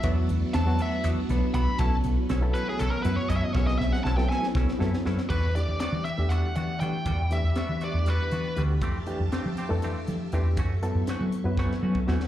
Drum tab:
CC |--------------|--------------|--------------|x-------------|
HH |x-x-x-x-x-x-x-|x-x-x-x-x-x-x-|--------------|--x-x-x-x-x-x-|
SD |----o-----o---|----o---------|oooooooooooooo|----o---------|
BD |o-----------o-|o-----------o-|o-------o-----|o-------------|

CC |--------------|--------------|--------------|
HH |x-x-x-x-x-x-x-|x-x-x-x-x-x-x-|x-x-x-x-------|
SD |--o-o---------|----o-o---o---|----o---oo--oo|
BD |o-------------|o-------------|o-------o--o--|